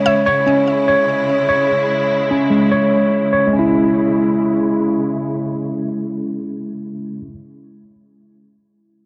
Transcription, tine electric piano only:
Already playing: G#3 C#4
0.06 C#5
0.26 C#5
0.46 C#4
0.88 C#5
1.49 C#5
2.31 C#4
2.50 G#3
2.72 C#5
3.33 C#5
3.47 G#3
3.53 C#4
3.59 E4

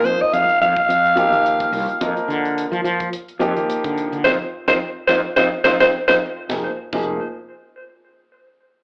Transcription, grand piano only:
Already playing: F3 A#3 D#4 F4
1.16 F3 A#3 D#4 G4
2.01 F3 A#3 A#4 D#5
3.39 F3 A#3 D#4 G4
4.25 C4 D#4 F4
4.68 C4 D#4 F4
5.09 C4 D#4 F4
5.37 C4 D#4 F4
5.65 C4 D#4 F4
5.81 C4 D#4 F4
6.08 C4 D#4 F4
6.49 F3 A#3 D#4 G#4
6.94 F3 A#3 D#4 G#4

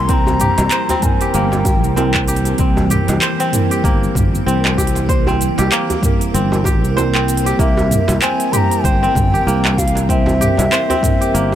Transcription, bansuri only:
Already playing: C6
0.09 A#5 C6
1.03 G#5
1.33 G5
7.59 E5
8.22 G#5
8.53 C6
8.57 A#5
8.85 G5
9.78 F5
10.10 E5

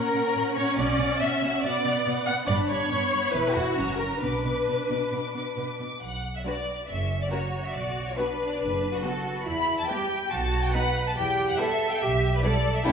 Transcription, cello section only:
0.14 A#2
0.35 A#2
0.56 A#2
0.77 B2
0.98 B2
1.20 B2
1.41 B2
1.63 B2
1.84 B2
2.06 B2
2.27 B2
2.48 G2
2.70 G2
2.91 G2
3.13 G2
3.34 E2
3.56 E2
3.77 F#2
4.00 F#2
4.22 B2
4.44 B2
4.67 B2
4.89 B2
5.11 B2
5.34 B2
5.56 B2
5.79 B2
6.89 C#4
7.31 F#4
8.17 D4
9.04 F#4
9.47 E4
9.89 G4
10.32 F#4
10.73 B4
11.16 G4
11.59 A4
12.02 G4
12.44 A4
12.86 G4

